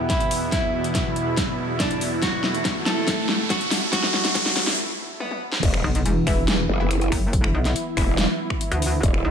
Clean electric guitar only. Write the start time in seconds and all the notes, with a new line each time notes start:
0.10 E4
0.52 E4
1.80 D4
2.23 F#4
2.86 A4
3.50 F#4
3.93 F#4
5.20 B3